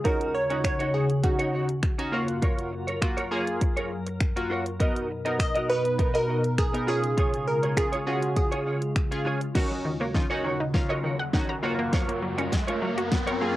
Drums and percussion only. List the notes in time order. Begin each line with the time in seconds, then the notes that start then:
0.05 kick, closed hi-hat
0.21 closed hi-hat
0.50 closed hi-hat
0.64 finger snap, kick, closed hi-hat
0.80 closed hi-hat
1.10 closed hi-hat
1.24 kick, closed hi-hat
1.39 closed hi-hat
1.69 closed hi-hat
1.83 finger snap, kick, closed hi-hat
1.99 closed hi-hat
2.28 closed hi-hat
2.42 kick, closed hi-hat
2.59 closed hi-hat
2.88 closed hi-hat
3.02 finger snap, kick, closed hi-hat
3.18 closed hi-hat
3.47 closed hi-hat
3.61 kick, closed hi-hat
3.77 closed hi-hat
4.07 closed hi-hat
4.20 finger snap, kick, closed hi-hat
4.37 closed hi-hat
4.66 closed hi-hat
4.80 kick, closed hi-hat
4.96 closed hi-hat
5.26 closed hi-hat
5.39 finger snap, kick, closed hi-hat
5.55 closed hi-hat
5.85 closed hi-hat
5.99 kick, closed hi-hat
6.15 closed hi-hat
6.44 closed hi-hat
6.58 finger snap, kick, closed hi-hat
6.75 closed hi-hat
7.04 closed hi-hat
7.18 kick, closed hi-hat
7.34 closed hi-hat
7.63 closed hi-hat
7.77 finger snap, kick, closed hi-hat
7.93 closed hi-hat
8.23 closed hi-hat
8.37 kick, closed hi-hat
8.52 closed hi-hat
8.82 closed hi-hat
8.96 finger snap, kick, closed hi-hat
9.12 closed hi-hat
9.41 closed hi-hat
9.55 kick, snare, crash
10.15 kick, snare
10.74 kick, snare
11.33 kick, snare
11.93 kick, snare, closed hi-hat
12.09 closed hi-hat
12.38 closed hi-hat
12.52 kick, snare, closed hi-hat
12.68 closed hi-hat
12.98 closed hi-hat
13.12 kick, snare, closed hi-hat
13.27 closed hi-hat